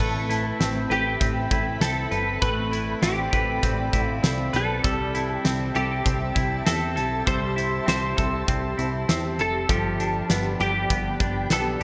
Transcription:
0.00 0.53 A1 medium
0.00 2.41 A3 medium
0.00 0.60 C4 soft
0.00 9.65 C4 medium
0.00 0.29 E4 medium
0.00 0.91 A4 medium
0.00 4.80 A4 medium
0.00 0.89 B4 medium
0.00 2.39 E5 medium
0.00 4.80 B5 medium
0.00 kick loud
0.00 crash medium
0.30 1.51 E4 soft
0.30 closed hi-hat medium
0.60 0.87 A1 medium
0.60 1.20 C4 medium
0.60 snare medium
0.60 closed hi-hat soft
0.90 1.17 A1 medium
0.90 1.81 G4 medium
0.90 2.10 B4 medium
0.90 closed hi-hat soft
1.20 1.48 A1 medium
1.20 1.81 C4 medium
1.20 kick medium
1.20 closed hi-hat medium
1.51 1.78 A1 medium
1.51 2.72 E4 medium
1.51 kick medium
1.51 closed hi-hat soft
1.80 2.07 C2 medium
1.80 3.02 C4 medium
1.80 2.41 A4 medium
1.80 snare loud
1.80 closed hi-hat medium
2.11 2.38 G1 medium
2.11 2.41 B4 medium
2.11 closed hi-hat soft
2.42 2.95 A1 loud
2.42 4.83 A3 medium
2.42 2.98 B4 medium
2.42 3.32 B4 medium
2.42 4.82 D5 medium
2.42 kick loud
2.42 closed hi-hat medium
2.72 3.93 E4 medium
2.72 closed hi-hat medium
3.02 3.29 A1 medium
3.02 3.62 C4 medium
3.02 4.07 G4 medium
3.02 snare loud
3.02 closed hi-hat medium
3.33 3.60 A1 medium
3.33 4.52 B4 medium
3.33 kick medium
3.33 closed hi-hat soft
3.62 3.90 A1 loud
3.62 4.22 C4 medium
3.62 kick medium
3.62 closed hi-hat medium
3.93 4.20 A1 medium
3.93 5.14 E4 medium
3.93 kick medium
3.93 closed hi-hat soft
4.07 4.56 F4 medium
4.23 4.50 C2 medium
4.23 5.44 C4 medium
4.23 snare loud
4.23 closed hi-hat medium
4.53 4.81 B1 medium
4.53 5.35 A4 medium
4.53 4.84 B4 medium
4.53 closed hi-hat medium
4.84 5.38 C2 medium
4.84 7.26 G3 medium
4.84 11.83 G4 medium
4.84 5.73 A4 medium
4.84 9.65 E5 medium
4.84 9.65 A5 medium
4.84 kick loud
4.84 closed hi-hat medium
5.15 6.34 E4 medium
5.15 closed hi-hat medium
5.35 5.72 G4 medium
5.45 5.72 C2 medium
5.45 6.03 C4 medium
5.45 snare loud
5.45 closed hi-hat medium
5.75 6.02 C2 medium
5.75 6.66 G4 medium
5.75 6.95 A4 medium
5.75 closed hi-hat soft
6.04 6.32 C2 loud
6.04 6.64 C4 medium
6.04 kick medium
6.04 closed hi-hat medium
6.35 6.63 C2 medium
6.35 7.55 E4 medium
6.35 kick medium
6.35 closed hi-hat soft
6.66 6.98 E2 medium
6.66 7.85 C4 medium
6.66 7.27 A4 medium
6.66 snare loud
6.66 closed hi-hat medium
6.96 7.23 B1 medium
6.96 7.25 A4 medium
6.96 closed hi-hat soft
7.26 7.80 C2 loud
7.26 9.69 G3 medium
7.26 8.16 A4 soft
7.26 7.87 C5 loud
7.26 kick loud
7.26 closed hi-hat medium
7.56 8.77 E4 soft
7.56 closed hi-hat medium
7.86 8.14 C2 medium
7.86 8.47 C4 medium
7.86 9.41 C5 medium
7.86 snare loud
7.86 closed hi-hat medium
8.17 8.45 C2 medium
8.17 9.38 A4 medium
8.17 kick medium
8.17 closed hi-hat soft
8.48 8.75 C2 loud
8.48 9.07 C4 medium
8.48 kick medium
8.48 closed hi-hat medium
8.78 9.05 C2 medium
8.78 9.75 E4 medium
8.78 closed hi-hat soft
9.09 9.41 E2 medium
9.09 9.75 C4 medium
9.09 snare loud
9.09 closed hi-hat medium
9.39 9.66 F1 medium
9.39 9.69 A4 medium
9.39 10.57 A4 medium
9.39 closed hi-hat soft
9.68 10.23 G1 loud
9.68 11.83 F3 medium
9.68 10.59 G4 medium
9.68 11.49 A4 medium
9.68 11.83 D5 medium
9.68 11.83 G5 medium
9.68 11.83 B5 medium
9.68 kick loud
9.68 closed hi-hat medium
10.00 11.20 D4 medium
10.00 closed hi-hat medium
10.29 10.56 G1 medium
10.29 10.89 B3 medium
10.29 11.83 B4 medium
10.29 snare medium
10.29 closed hi-hat medium
10.60 10.87 G1 medium
10.60 11.80 G4 medium
10.60 11.52 G4 medium
10.60 closed hi-hat soft
10.90 11.17 G1 medium
10.90 11.50 B3 medium
10.90 kick medium
10.90 closed hi-hat medium
11.20 11.47 G1 medium
11.20 11.83 D4 medium
11.20 kick medium
11.20 closed hi-hat soft
11.50 11.77 B1 medium
11.50 11.83 B3 medium
11.50 11.83 A4 soft
11.50 11.83 A4 medium
11.50 snare loud
11.50 closed hi-hat medium

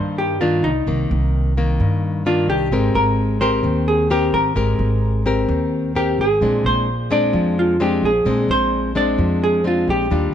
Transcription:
0.00 0.60 G2 medium
0.00 0.85 G2 soft
0.00 0.37 D#3 soft
0.00 0.37 A#3 medium
0.00 0.37 D4 medium
0.00 0.20 C5 medium
0.18 0.40 G4 medium
0.41 0.71 D#3 soft
0.41 0.71 A#3 soft
0.41 0.71 D4 medium
0.41 0.65 F4 medium
0.63 0.85 C2 medium
0.63 2.31 D#4 medium
0.87 1.08 C2 medium
0.87 1.77 C3 soft
0.87 1.53 D#3 soft
0.87 1.53 A#3 soft
1.11 1.76 C2 medium
1.57 2.23 D#3 soft
1.57 2.23 A#3 medium
1.80 2.45 G2 medium
1.80 2.70 G2 soft
2.26 2.68 D#3 soft
2.26 2.68 A#3 soft
2.26 2.69 D4 medium
2.26 2.49 F4 medium
2.48 2.70 C2 medium
2.48 2.92 G4 medium
2.71 2.93 G#1 medium
2.71 3.62 G#3 soft
2.71 3.38 C4 soft
2.71 3.38 G4 soft
2.71 3.38 A#4 soft
2.95 3.60 G#1 medium
2.95 3.40 A#4 medium
3.41 4.07 C4 medium
3.41 4.07 G4 medium
3.41 4.07 A#4 medium
3.41 3.84 C5 medium
3.63 4.29 D#2 medium
3.63 4.54 D#3 medium
3.88 4.11 G#4 medium
4.10 4.53 C4 medium
4.10 4.53 G4 soft
4.10 4.35 G4 medium
4.10 4.53 A#4 medium
4.33 4.55 G#1 medium
4.33 6.00 A#4 medium
4.56 4.78 G#1 medium
4.56 5.46 G#3 soft
4.56 5.22 C4 soft
4.56 5.22 G4 soft
4.56 5.22 A#4 medium
4.79 5.44 G#1 medium
5.26 5.91 C4 medium
5.26 5.92 G4 medium
5.26 5.92 A#4 medium
5.48 6.14 D#2 medium
5.48 6.39 D#3 soft
5.95 6.25 C4 soft
5.95 6.25 G4 soft
5.95 6.20 G4 medium
5.95 6.26 A#4 soft
6.18 6.39 G#1 medium
6.18 6.63 G#4 medium
6.41 6.63 A#1 medium
6.41 7.32 A#2 soft
6.41 6.88 G#3 soft
6.41 6.88 C4 soft
6.41 6.88 D4 soft
6.64 7.30 A#1 medium
6.64 7.12 C5 medium
7.11 7.76 G#3 medium
7.11 7.76 C4 soft
7.11 7.77 D4 medium
7.11 7.59 D5 medium
7.33 7.99 F2 medium
7.33 8.24 F3 medium
7.59 7.82 F4 medium
7.80 8.10 G#3 medium
7.80 8.10 C4 medium
7.80 8.10 D4 medium
7.80 8.05 G4 medium
8.03 8.24 A#1 medium
8.03 8.47 G#4 medium
8.25 8.47 A#1 medium
8.25 9.16 A#2 soft
8.25 8.91 G#3 soft
8.25 8.92 C4 soft
8.25 8.92 D4 soft
8.49 9.14 A#1 medium
8.49 8.93 C5 medium
8.95 9.61 G#3 medium
8.95 9.61 C4 soft
8.95 9.61 D4 medium
8.95 9.39 D5 medium
9.18 9.83 F2 medium
9.18 10.08 F3 soft
9.44 9.64 G#4 medium
9.64 10.07 G#3 soft
9.64 10.07 C4 soft
9.64 10.07 D4 medium
9.64 9.90 F4 medium
9.88 10.09 A#1 medium
9.88 10.34 G4 medium
10.10 10.32 D#2 medium
10.10 10.34 D#3 soft
10.10 10.34 G3 soft
10.10 10.34 D4 soft
10.10 10.34 F4 soft

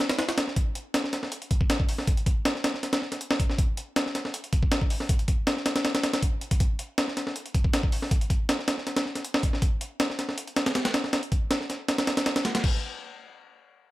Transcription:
0.09 snare loud
0.09 closed hi-hat medium
0.19 snare loud
0.19 closed hi-hat medium
0.29 snare loud
0.29 closed hi-hat medium
0.38 snare loud
0.38 closed hi-hat medium
0.48 snare soft
0.56 kick loud
0.56 closed hi-hat medium
0.75 closed hi-hat medium
0.94 snare loud
0.94 closed hi-hat medium
1.04 snare soft
1.13 snare medium
1.13 closed hi-hat medium
1.23 snare medium
1.32 closed hi-hat medium
1.42 closed hi-hat soft
1.51 kick loud
1.51 closed hi-hat medium
1.61 kick medium
1.70 snare loud
1.70 closed hi-hat medium
1.80 kick loud
1.89 open hi-hat medium
1.98 snare medium
2.07 kick loud
2.07 closed hi-hat medium
2.17 closed hi-hat soft
2.26 kick loud
2.26 closed hi-hat medium
2.45 snare loud
2.45 closed hi-hat medium
2.55 snare soft
2.64 snare loud
2.64 closed hi-hat medium
2.74 snare soft
2.83 snare soft
2.83 closed hi-hat medium
2.93 snare loud
2.93 closed hi-hat medium
3.02 snare soft
3.12 snare soft
3.12 closed hi-hat medium
3.21 closed hi-hat medium
3.31 snare loud
3.40 kick medium
3.40 closed hi-hat medium
3.50 snare soft
3.58 kick loud
3.58 closed hi-hat medium
3.77 closed hi-hat medium
3.96 snare loud
3.96 closed hi-hat medium
4.06 snare soft
4.15 snare medium
4.15 closed hi-hat medium
4.25 snare medium
4.34 closed hi-hat medium
4.44 closed hi-hat soft
4.53 kick loud
4.53 closed hi-hat medium
4.63 kick medium
4.72 snare loud
4.72 closed hi-hat medium
4.81 kick medium
4.90 open hi-hat medium
5.00 snare medium
5.09 kick loud
5.09 closed hi-hat medium
5.19 closed hi-hat soft
5.28 kick medium
5.28 closed hi-hat medium
5.47 snare loud
5.47 closed hi-hat medium
5.57 snare soft
5.66 snare loud
5.66 closed hi-hat medium
5.76 snare loud
5.76 closed hi-hat medium
5.85 snare loud
5.85 closed hi-hat medium
5.95 snare loud
5.95 closed hi-hat medium
6.03 snare loud
6.03 closed hi-hat medium
6.13 snare loud
6.13 closed hi-hat medium
6.22 kick loud
6.22 closed hi-hat medium
6.41 closed hi-hat medium
6.51 kick loud
6.51 closed hi-hat medium
6.60 kick loud
6.60 closed hi-hat medium
6.79 closed hi-hat medium
6.98 snare loud
6.98 closed hi-hat medium
7.08 snare soft
7.17 snare medium
7.17 closed hi-hat medium
7.27 snare medium
7.36 closed hi-hat medium
7.46 closed hi-hat soft
7.55 kick loud
7.55 closed hi-hat medium
7.64 kick medium
7.74 snare loud
7.74 closed hi-hat medium
7.83 kick medium
7.92 open hi-hat medium
8.02 snare medium
8.11 kick loud
8.11 closed hi-hat medium
8.21 closed hi-hat soft
8.30 kick medium
8.30 closed hi-hat medium
8.49 snare loud
8.49 closed hi-hat medium
8.59 snare soft
8.68 snare loud
8.68 closed hi-hat medium
8.78 snare soft
8.87 snare soft
8.87 closed hi-hat medium
8.96 snare loud
8.96 closed hi-hat medium
9.06 snare soft
9.15 snare soft
9.15 closed hi-hat medium
9.24 closed hi-hat medium
9.34 snare loud
9.43 kick medium
9.43 closed hi-hat medium
9.53 snare soft
9.62 kick loud
9.62 closed hi-hat medium
9.81 closed hi-hat medium
10.00 snare loud
10.00 closed hi-hat medium
10.10 snare soft
10.19 snare medium
10.19 closed hi-hat medium
10.29 snare medium
10.38 closed hi-hat medium
10.48 closed hi-hat soft
10.56 snare loud
10.56 closed hi-hat medium
10.66 snare loud
10.66 closed hi-hat medium
10.75 snare loud
10.75 closed hi-hat medium
10.85 snare loud
10.85 closed hi-hat medium
10.94 snare loud
10.94 closed hi-hat medium
11.04 snare medium
11.13 snare loud
11.13 closed hi-hat medium
11.23 closed hi-hat soft
11.32 kick medium
11.32 closed hi-hat medium
11.51 snare loud
11.51 closed hi-hat medium
11.61 snare soft
11.70 snare soft
11.70 closed hi-hat medium
11.88 snare loud
11.88 closed hi-hat medium
11.98 snare loud
11.98 closed hi-hat medium
12.07 snare loud
12.07 closed hi-hat medium
12.17 snare loud
12.17 closed hi-hat medium
12.26 snare loud
12.26 closed hi-hat medium
12.36 snare loud
12.36 closed hi-hat medium
12.45 snare loud
12.45 closed hi-hat medium
12.55 snare loud
12.55 closed hi-hat medium
12.64 kick loud
12.64 crash medium

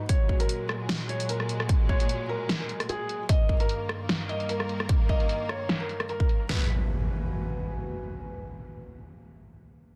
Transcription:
0.00 3.29 F#4 medium
0.00 0.67 A#5 medium
0.09 3.26 A#2 medium
0.09 3.26 F#3 medium
0.09 3.26 G#3 medium
0.09 0.34 C#5 loud
0.09 kick loud
0.09 closed hi-hat medium
0.25 6.49 A#4 medium
0.29 kick medium
0.34 3.29 G#5 medium
0.40 0.64 A#4 medium
0.40 closed hi-hat soft
0.49 closed hi-hat medium
0.69 cross-stick medium
0.89 snare loud
0.89 closed hi-hat medium
1.09 1.26 C#5 medium
1.09 closed hi-hat soft
1.20 closed hi-hat medium
1.29 1.54 A#4 medium
1.29 closed hi-hat medium
1.40 cross-stick soft
1.49 closed hi-hat medium
1.60 cross-stick medium
1.69 kick loud
1.69 closed hi-hat medium
1.89 2.22 C#5 medium
1.89 kick medium
2.00 closed hi-hat soft
2.09 closed hi-hat medium
2.29 2.54 A#4 medium
2.49 snare loud
2.49 closed hi-hat medium
2.60 2.84 A#4 medium
2.69 closed hi-hat soft
2.80 cross-stick medium
2.80 closed hi-hat medium
2.89 3.22 G#4 medium
2.89 closed hi-hat medium
3.09 closed hi-hat medium
3.29 6.46 G2 medium
3.29 6.46 D#3 medium
3.29 6.49 G3 medium
3.29 6.46 A#3 medium
3.29 3.54 D#5 loud
3.29 kick loud
3.29 closed hi-hat medium
3.49 kick medium
3.60 3.84 A#4 loud
3.60 closed hi-hat medium
3.69 closed hi-hat medium
3.77 6.49 D#4 medium
3.84 6.49 G5 medium
3.89 cross-stick medium
4.09 snare loud
4.09 closed hi-hat medium
4.29 4.46 D#5 medium
4.29 closed hi-hat medium
4.40 closed hi-hat medium
4.49 4.74 A#4 medium
4.49 closed hi-hat medium
4.60 cross-stick medium
4.69 closed hi-hat medium
4.80 cross-stick medium
4.89 kick loud
4.89 closed hi-hat medium
5.09 5.42 D#5 loud
5.09 kick medium
5.20 closed hi-hat medium
5.29 closed hi-hat medium
5.49 5.74 C#5 medium
5.49 cross-stick medium
5.69 snare loud
5.69 closed hi-hat medium
5.80 6.04 A#4 medium
5.89 closed hi-hat medium
6.00 cross-stick medium
6.00 closed hi-hat medium
6.09 6.42 A#4 medium
6.09 closed hi-hat medium
6.20 kick medium
6.29 closed hi-hat medium
6.49 6.68 G#3 medium
6.49 6.68 F#4 medium
6.49 8.05 F#4 medium
6.49 6.64 B4 medium
6.49 6.68 B4 medium
6.49 snare loud
6.49 impact medium
6.56 8.05 B4 medium
6.62 8.05 G#5 medium

